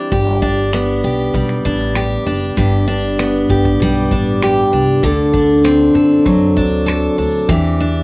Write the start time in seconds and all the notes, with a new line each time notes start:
Already playing: E3 G3 C4 D4 G4
0.11 G1 G4, kick, shaker
0.27 shaker
0.42 D4, kick
0.57 shaker
0.72 B3, finger snap, shaker
0.89 shaker
1.04 B1 G4
1.18 shaker
1.33 B1 G3, kick, shaker
1.49 finger snap, shaker
1.65 A1 D4, kick, shaker
1.80 shaker
1.95 G4, finger snap, shaker
2.11 shaker
2.26 F#1 D4
2.42 shaker
2.57 G1 G2 G4, kick, shaker
2.72 shaker
2.88 D4
3.03 shaker
3.18 B3, finger snap, shaker
3.35 shaker
3.50 G1 G4, kick, shaker
3.65 kick, shaker
3.80 B1 G3, kick, shaker
3.95 shaker
4.11 A1 D4, kick
4.26 shaker
4.42 G4, finger snap, shaker
4.58 shaker
4.72 C2 D4
4.88 shaker
5.03 D2 D3 A4, kick, shaker
5.18 shaker
5.33 D4, kick, shaker
5.49 shaker
5.64 C4, finger snap, shaker
5.81 shaker
5.94 F#2 A4, shaker
6.11 shaker
6.25 F#2 F#3, kick, shaker
6.41 shaker
6.57 D2 D4, kick
6.73 shaker
6.86 A4, finger snap, shaker
7.03 shaker
7.18 D2 D4
7.34 shaker
7.49 E2 E3 G4, kick, shaker
7.64 shaker
7.80 D4
7.95 shaker